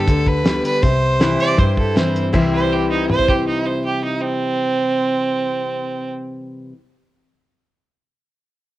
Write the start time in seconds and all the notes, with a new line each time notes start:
Already playing: D4 G4 B4
0.00 A4
0.08 D2 D3, kick, closed hi-hat
0.27 B4, kick
0.44 D3 G3 B3 G4, snare, closed hi-hat
0.65 B4, closed hi-hat
0.83 C2 C3 C5, kick, closed hi-hat
1.20 E3 G3 C4 E4 G4 B4, snare, closed hi-hat
1.40 C5 D5, closed hi-hat
1.57 G2 C5, kick, closed hi-hat
1.77 A4, kick
1.95 E3 G3 C4 E4 C5, snare, closed hi-hat
2.16 closed hi-hat
2.33 C2 C3 E3 G3 C4 E4 G4 C5, kick, crash
2.54 C5
2.72 G4
2.90 D#4
3.09 C5, mid tom
3.19 floor tom
3.28 G4, kick
3.47 D#4
3.65 C5
3.85 G4
4.04 D#4
4.21 C4